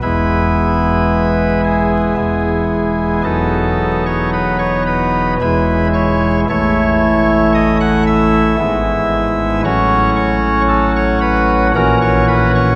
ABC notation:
X:1
M:3/4
L:1/16
Q:1/4=56
K:E
V:1 name="Pipe organ"
B6 G6 | A3 c B c B2 B2 c2 | c4 d f e6 | c2 c2 A c B2 ^A c B c |]
V:2 name="Pipe organ" clef=bass
[E,,,E,,G,B,E]8 [E,,,E,,G,B,E]4 | [E,,,E,,F,B,D]8 [E,,,E,,E,G,E]4 | [A,,,A,,E,A,E]8 [G,,,G,,G,B,E]4 | [A,,,A,,F,CF]8 [^A,,,^A,,E,CF]4 |]